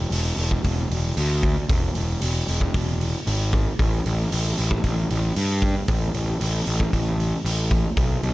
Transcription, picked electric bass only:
0.11 E1
0.37 E1
0.64 E1
0.90 E1
1.17 D2
1.69 E1
1.96 E1
2.22 E1
2.48 E1
2.74 E1
3.27 G#1
3.79 A1
4.06 A1
4.32 A1
4.59 A1
4.84 A1
5.11 A1
5.37 G2
5.88 A1
6.14 A1
6.41 A1
6.67 A1
6.93 A1
7.45 A1
7.97 B1
8.23 B1

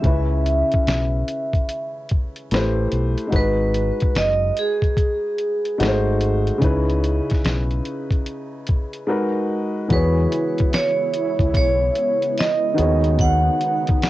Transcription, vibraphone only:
Already playing: E5
3.36 B4
4.18 D#5
4.59 G#4
9.93 B4
10.75 C#5
11.57 C#5
12.39 D#5
13.21 F#5

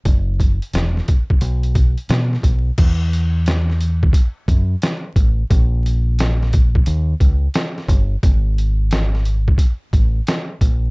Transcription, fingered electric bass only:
0.05 F#1
0.73 E1
1.42 B1
2.10 B2
2.43 B1
2.78 E2
4.48 F#2
5.16 A1
5.50 A#1
6.87 D#2
7.20 C#2
7.88 G1
8.23 G#1
9.93 A1
10.61 A#1

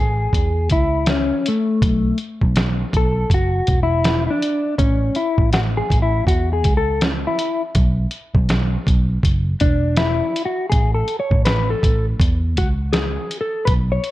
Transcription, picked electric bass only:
Already playing: A1
0.33 E2
0.71 C#2
1.82 B1
2.42 B1
2.94 B1
3.30 F#1
3.68 E1
4.79 A1
5.38 A1
5.91 A1
6.26 E2
6.65 C#2
7.75 B1
8.35 B1
8.87 B1
9.23 F#1
9.61 E1
10.72 A1
11.31 A1
11.83 A1
12.20 E2
12.58 C#2
13.68 B1

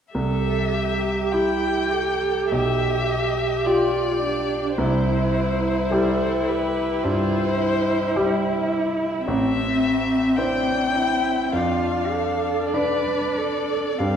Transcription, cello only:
0.15 A4
0.74 G4
1.34 E4
1.92 A4
2.52 G4
3.67 F4
4.22 D4
4.78 E4
5.91 A4
6.49 G4
7.04 F4
7.60 E4
9.27 C4
10.37 D4
10.95 E4
11.53 F4
12.13 A4
12.74 B4
13.38 A4
13.99 G4

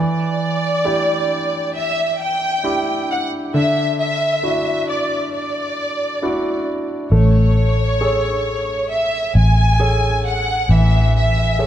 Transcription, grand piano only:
Already playing: E3
0.84 D4 E4 G4
2.64 D4 E4 G4
3.54 D3
4.43 D4 E4 F#4
6.22 D4 E4 F#4
7.12 A3
8.01 G#4 A4 C#5
9.80 G#4 A4 C#5
10.70 E3
11.59 G#4 A4 C#5

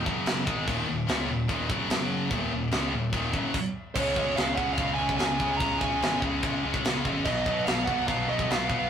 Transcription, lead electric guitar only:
3.95 C#5
4.36 F5
4.56 F#5
4.73 F5
4.94 G#5
5.17 G#5
5.57 A#5
5.79 G#5
7.25 D#5
7.65 F5
7.84 F#5
8.07 F5
8.29 D#5
8.51 F5

